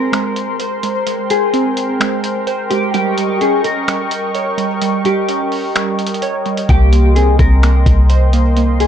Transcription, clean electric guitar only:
0, 0, Header, 1, 2, 480
1, 0, Start_track
1, 0, Tempo, 468750
1, 1093, Time_signature, 4, 2, 24, 8
1, 9086, End_track
2, 0, Start_track
2, 0, Title_t, "Clean electric guitar"
2, 0, Program_c, 0, 27
2, 0, Note_on_c, 0, 70, 77
2, 570, Note_off_c, 0, 70, 0
2, 1335, Note_on_c, 0, 68, 72
2, 2733, Note_off_c, 0, 68, 0
2, 2769, Note_on_c, 0, 67, 86
2, 2999, Note_off_c, 0, 67, 0
2, 3011, Note_on_c, 0, 67, 100
2, 3463, Note_off_c, 0, 67, 0
2, 3493, Note_on_c, 0, 68, 80
2, 3721, Note_off_c, 0, 68, 0
2, 3732, Note_on_c, 0, 70, 80
2, 4411, Note_off_c, 0, 70, 0
2, 5177, Note_on_c, 0, 67, 80
2, 6333, Note_off_c, 0, 67, 0
2, 6855, Note_on_c, 0, 67, 122
2, 7305, Note_off_c, 0, 67, 0
2, 7326, Note_on_c, 0, 68, 83
2, 7557, Note_off_c, 0, 68, 0
2, 7568, Note_on_c, 0, 70, 75
2, 8249, Note_off_c, 0, 70, 0
2, 9014, Note_on_c, 0, 68, 71
2, 9086, Note_off_c, 0, 68, 0
2, 9086, End_track
0, 0, End_of_file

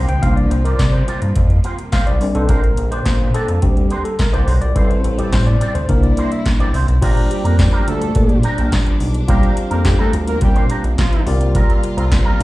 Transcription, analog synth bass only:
0, 0, Header, 1, 2, 480
1, 0, Start_track
1, 0, Tempo, 566038
1, 194, Time_signature, 4, 2, 24, 8
1, 10541, End_track
2, 0, Start_track
2, 0, Title_t, "Analog synth bass"
2, 0, Program_c, 0, 38
2, 73, Note_on_c, 0, 37, 83
2, 175, Note_off_c, 0, 37, 0
2, 192, Note_on_c, 0, 36, 115
2, 396, Note_off_c, 0, 36, 0
2, 433, Note_on_c, 0, 36, 98
2, 636, Note_off_c, 0, 36, 0
2, 674, Note_on_c, 0, 48, 95
2, 877, Note_off_c, 0, 48, 0
2, 1032, Note_on_c, 0, 43, 82
2, 1134, Note_off_c, 0, 43, 0
2, 1154, Note_on_c, 0, 41, 97
2, 1357, Note_off_c, 0, 41, 0
2, 1755, Note_on_c, 0, 36, 88
2, 1856, Note_off_c, 0, 36, 0
2, 1873, Note_on_c, 0, 34, 93
2, 1975, Note_off_c, 0, 34, 0
2, 1996, Note_on_c, 0, 35, 87
2, 2097, Note_off_c, 0, 35, 0
2, 2111, Note_on_c, 0, 34, 121
2, 2315, Note_off_c, 0, 34, 0
2, 2358, Note_on_c, 0, 34, 93
2, 2559, Note_off_c, 0, 34, 0
2, 2592, Note_on_c, 0, 46, 99
2, 2796, Note_off_c, 0, 46, 0
2, 2955, Note_on_c, 0, 41, 92
2, 3056, Note_off_c, 0, 41, 0
2, 3076, Note_on_c, 0, 38, 89
2, 3278, Note_off_c, 0, 38, 0
2, 3674, Note_on_c, 0, 36, 80
2, 3776, Note_off_c, 0, 36, 0
2, 3795, Note_on_c, 0, 35, 93
2, 3896, Note_off_c, 0, 35, 0
2, 3914, Note_on_c, 0, 34, 90
2, 4015, Note_off_c, 0, 34, 0
2, 4034, Note_on_c, 0, 33, 112
2, 4237, Note_off_c, 0, 33, 0
2, 4274, Note_on_c, 0, 33, 101
2, 4477, Note_off_c, 0, 33, 0
2, 4516, Note_on_c, 0, 45, 98
2, 4718, Note_off_c, 0, 45, 0
2, 4876, Note_on_c, 0, 38, 87
2, 4977, Note_off_c, 0, 38, 0
2, 4998, Note_on_c, 0, 36, 102
2, 5199, Note_off_c, 0, 36, 0
2, 5595, Note_on_c, 0, 34, 88
2, 5696, Note_off_c, 0, 34, 0
2, 5714, Note_on_c, 0, 36, 89
2, 5816, Note_off_c, 0, 36, 0
2, 5833, Note_on_c, 0, 35, 87
2, 5935, Note_off_c, 0, 35, 0
2, 5956, Note_on_c, 0, 34, 122
2, 6057, Note_off_c, 0, 34, 0
2, 6315, Note_on_c, 0, 41, 94
2, 6518, Note_off_c, 0, 41, 0
2, 6676, Note_on_c, 0, 38, 98
2, 6878, Note_off_c, 0, 38, 0
2, 6918, Note_on_c, 0, 46, 98
2, 7119, Note_off_c, 0, 46, 0
2, 7276, Note_on_c, 0, 34, 104
2, 7377, Note_off_c, 0, 34, 0
2, 7635, Note_on_c, 0, 35, 83
2, 7837, Note_off_c, 0, 35, 0
2, 7874, Note_on_c, 0, 34, 123
2, 7975, Note_off_c, 0, 34, 0
2, 8233, Note_on_c, 0, 41, 89
2, 8436, Note_off_c, 0, 41, 0
2, 8594, Note_on_c, 0, 38, 97
2, 8797, Note_off_c, 0, 38, 0
2, 8835, Note_on_c, 0, 46, 111
2, 9037, Note_off_c, 0, 46, 0
2, 9192, Note_on_c, 0, 34, 89
2, 9294, Note_off_c, 0, 34, 0
2, 9552, Note_on_c, 0, 36, 100
2, 9857, Note_off_c, 0, 36, 0
2, 10153, Note_on_c, 0, 36, 99
2, 10356, Note_off_c, 0, 36, 0
2, 10513, Note_on_c, 0, 43, 94
2, 10541, Note_off_c, 0, 43, 0
2, 10541, End_track
0, 0, End_of_file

